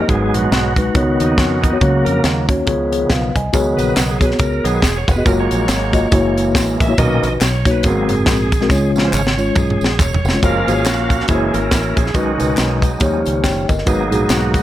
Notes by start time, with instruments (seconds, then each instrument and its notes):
0.01 tine electric piano G4 D#5
0.07 fingered electric bass G#1, tine electric piano G#2 G#3 D#4 F#4 B4, tonewheel organ F#3 G#3 B3 G#4, kick, closed hi-hat
0.34 fingered electric bass A#1, tonewheel organ F#4, closed hi-hat
0.52 fingered electric bass B1, snare, closed hi-hat
0.76 tine electric piano G#3 D#4 F#4 B4, kick, closed hi-hat
0.94 fingered electric bass C#2, tine electric piano C#3 B3 D#4 F#4 C#5, tonewheel organ D#3 B3 F#4, kick, closed hi-hat
1.20 fingered electric bass D#2, tonewheel organ D#4, closed hi-hat
1.38 fingered electric bass F2, tonewheel organ C#4, kick, snare, closed hi-hat
1.62 tonewheel organ D#4, kick, closed hi-hat
1.71 tine electric piano B3 D#4 F#4 C#5
1.81 fingered electric bass C#2, tonewheel organ C#3 F#3 A#3 F#4, tine electric piano C#3 A#3 C#4 F#4 C#5, kick, closed hi-hat
2.05 fingered electric bass F2, tonewheel organ A#4, closed hi-hat
2.24 fingered electric bass D#2, snare, closed hi-hat
2.48 tine electric piano A#3 C#4 F#4 C#5, kick, closed hi-hat
2.66 fingered electric bass C#2, tine electric piano C#3 B3 F4 G#4 C#5, tonewheel organ D#3 F3 B3, kick, closed hi-hat
2.92 tine electric piano G#4 C#5, closed hi-hat
3.10 fingered electric bass B1, tine electric piano B4 F5, kick, snare, closed hi-hat
3.35 fingered electric bass C2, tine electric piano D#5 G#5, kick, closed hi-hat
3.53 fingered electric bass C#2, tine electric piano C#3 B3 F#4 G#4 C#5, tonewheel organ D#3 F#3 B3, kick, closed hi-hat, tambourine
3.77 fingered electric bass A#1, tonewheel organ B4, closed hi-hat, tambourine
3.95 fingered electric bass B1, tonewheel organ B4, snare, clap, closed hi-hat, tambourine
4.11 tonewheel organ G#4
4.20 tine electric piano B3 F#4 G#4 C#5, kick, closed hi-hat, tambourine
4.25 tonewheel organ B4
4.31 snare
4.39 fingered electric bass C#2, tonewheel organ A#4, kick, closed hi-hat, tambourine
4.64 fingered electric bass B1, tonewheel organ D#3 F#3 B3 G#4, closed hi-hat, tambourine
4.82 fingered electric bass E1, kick, snare, clap, closed hi-hat, tambourine
4.97 tonewheel organ C#5
5.08 fingered electric bass F1, tonewheel organ B4, kick, closed hi-hat, tambourine
5.16 tine electric piano B3 F#4 G#4 D#5
5.25 fingered electric bass F#1, tonewheel organ F#3 G#3 A#3 A#4, tine electric piano A#3 F4 F#4 C#5, kick, closed hi-hat, tambourine
5.40 tonewheel organ C#5
5.51 fingered electric bass A#1, closed hi-hat, tambourine
5.69 fingered electric bass G#1, snare, clap, closed hi-hat, tambourine
5.92 tine electric piano A#3 F4 F#4 D#5, kick, closed hi-hat, tambourine
6.11 fingered electric bass F#1, tonewheel organ E3 G#3 A#3, tine electric piano A#3 E4 F#4 C#5, kick, closed hi-hat, tambourine
6.38 closed hi-hat, tambourine
6.55 fingered electric bass A1, kick, snare, clap, closed hi-hat, tambourine
6.80 fingered electric bass A#1, tonewheel organ E5, kick, closed hi-hat, tambourine
6.88 tine electric piano A#3 E4 F#4 C#5
6.97 fingered electric bass B1, tine electric piano A#2 B2 D#4 F#4 A#4, tonewheel organ D#3 A#3 C#4 D#5, kick, closed hi-hat, tambourine
7.04 tine electric piano B4
7.23 fingered electric bass A#1, tonewheel organ D#5, closed hi-hat, tambourine
7.41 fingered electric bass B1, tonewheel organ C#5, snare, clap, closed hi-hat, tambourine
7.65 tine electric piano A#3 D#4 F#4 C#5, kick, closed hi-hat, tambourine
7.71 tonewheel organ B4
7.83 fingered electric bass G#1, tine electric piano G#2 G#3 B3 F#4 A#4, tonewheel organ F#3 A#3 C4 G#4, kick, closed hi-hat, tambourine
7.90 tine electric piano C4
8.09 fingered electric bass F#1, closed hi-hat, tambourine
8.26 fingered electric bass A#1, kick, snare, clap, closed hi-hat, tambourine
8.52 kick, closed hi-hat, tambourine
8.60 tine electric piano G#3 C4 F#4 A#4, snare
8.69 fingered electric bass C#2, tine electric piano C#3 G#3 C#4 F4 C#5, kick, snare, tambourine
8.95 fingered electric bass A#1, tonewheel organ F3 G#3 C#4, snare, tambourine
9.08 tonewheel organ C5
9.13 fingered electric bass G#1, tonewheel organ C#5, clap, tambourine
9.27 snare
9.37 tine electric piano G#3 C#4 F4 C#5, tambourine
9.56 fingered electric bass B1, tonewheel organ G#4, kick, mid tom, tambourine
9.70 mid tom
9.81 fingered electric bass A#1, snare, tambourine
9.99 fingered electric bass E1, tonewheel organ C#5, kick, clap, floor tom, tambourine
10.14 floor tom
10.25 fingered electric bass F1, tambourine
10.29 tine electric piano G#3, snare
10.33 tine electric piano C#4 F4 C#5
10.42 fingered electric bass F#1, tonewheel organ F3 G#3 A#3 C#4 A#4 F5, tine electric piano A#3 F4 F#4 C#5, kick, closed hi-hat, tambourine
10.67 fingered electric bass G#1, tine electric piano A#3 F4 F#4 C5, tonewheel organ G#4, closed hi-hat, tambourine
10.74 tine electric piano C#5
10.85 fingered electric bass A#1, tonewheel organ A#3 C#4 F#4, snare, clap, closed hi-hat, tambourine
11.10 kick, closed hi-hat, tambourine
11.20 snare
11.28 fingered electric bass F#1, tonewheel organ E3 G#3 A#3 C#4 E4 G#4, tine electric piano A#3 E4 F#4 C5, kick, closed hi-hat, tambourine
11.35 tine electric piano C#5
11.53 fingered electric bass G#1, tonewheel organ C#4 E4 A#4, closed hi-hat, tambourine
11.71 fingered electric bass A1, kick, snare, clap, closed hi-hat, tambourine
11.97 fingered electric bass A#1, tonewheel organ G#4, kick, closed hi-hat, tambourine
12.06 snare
12.14 fingered electric bass B1, tine electric piano B2 G#3 D#4 F#4 B4, tonewheel organ D#3 G#3 C#4 D#4 F#4, kick, closed hi-hat, tambourine
12.39 fingered electric bass C#2, tine electric piano G#3 D#4 F#4 B4, closed hi-hat, tambourine
12.57 fingered electric bass B1, tonewheel organ F#3 G#3 D#4, snare, clap, closed hi-hat, tambourine
12.82 kick, closed hi-hat, tambourine
13.00 fingered electric bass D#2, tine electric piano D#3 A#3 D#4 G4 C#5, tonewheel organ F3 G3 C#4, kick, closed hi-hat, tambourine
13.25 fingered electric bass C#2, closed hi-hat, tambourine
13.44 fingered electric bass F#1, tine electric piano C#5 G5, kick, snare, clap, closed hi-hat, tambourine
13.69 fingered electric bass G1, tine electric piano A#4, kick, closed hi-hat, tambourine
13.78 snare
13.85 fingered electric bass G#1, tine electric piano G#2 G#3 D#4 F#4 B4, tonewheel organ F#3 A#3 B3 D#4 G#4, kick, closed hi-hat, tambourine
14.10 fingered electric bass A#1, tine electric piano G#3 D#4 F#4 G#4, closed hi-hat, tambourine
14.30 fingered electric bass B1, tonewheel organ B3 D#4 F#4, snare, clap, closed hi-hat, tambourine
14.54 kick, closed hi-hat, tambourine